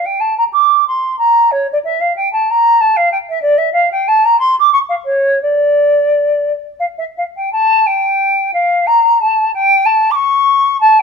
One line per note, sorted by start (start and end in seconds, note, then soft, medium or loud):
0.05 0.21 G5 medium
0.20 0.36 A5 medium
0.38 0.44 A#5 medium
0.53 0.84 D6 medium
0.87 1.18 C6 medium
1.18 1.53 A#5 medium
1.51 1.67 C#5 medium
1.72 1.78 D5 medium
1.84 2.02 E5 medium
2.00 2.15 F5 medium
2.16 2.31 G5 medium
2.33 2.52 A5 medium
2.50 2.82 A#5 medium
2.81 2.98 A5 medium
2.96 3.11 F5 medium
3.12 3.18 G5 medium
3.29 3.41 E5 medium
3.42 3.59 D5 medium
3.58 3.72 E5 medium
3.72 3.89 F5 medium
3.91 4.09 G5 medium
4.08 4.26 A5 medium
4.25 4.39 A#5 medium
4.39 4.55 C6 medium
4.59 4.72 D6 medium
4.72 4.78 C#6 medium
4.89 4.95 F5 medium
5.05 5.39 C#5 medium
5.42 6.52 D5 medium
6.79 6.85 F5 medium
6.98 7.04 E5 medium
7.17 7.23 F5 medium
7.36 7.52 G5 medium
7.52 7.88 A5 medium
7.86 8.51 G5 medium
8.53 8.88 F5 medium
8.87 9.22 A#5 medium
9.21 9.51 A5 medium
9.54 9.87 G5 medium
9.85 10.12 A5 medium
10.11 10.79 C#6 medium
10.11 10.16 D6 medium
10.80 11.00 A5 medium
10.99 11.02 G5 medium